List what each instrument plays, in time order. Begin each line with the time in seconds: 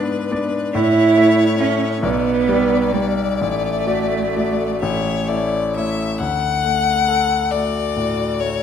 Already playing: grand piano G#2 B3 D4 D5, violin B4
0.31 grand piano B3 D4 D5
0.73 grand piano A2, cello E4, violin C#5
1.17 grand piano A3 E4 C#5
1.58 grand piano A3 E4 C#5, cello C#4
2.02 grand piano B1, cello B3, violin D5
2.48 grand piano G3 G4 D5
2.92 cello G3, grand piano G3 G4 D5
3.39 grand piano A1, cello A3
3.87 grand piano A3 F#4 D5
4.35 grand piano A3 F#4 D5
4.82 grand piano A1, violin C#5
5.28 grand piano A3 E4 C#5, violin D5
5.76 grand piano A3 E4 C#5, violin E5
6.20 grand piano D2, violin F#5
6.65 grand piano A3
7.08 grand piano A4
7.51 grand piano A3, cello F#4, violin D5
7.97 grand piano A2
8.40 grand piano A3, violin C#5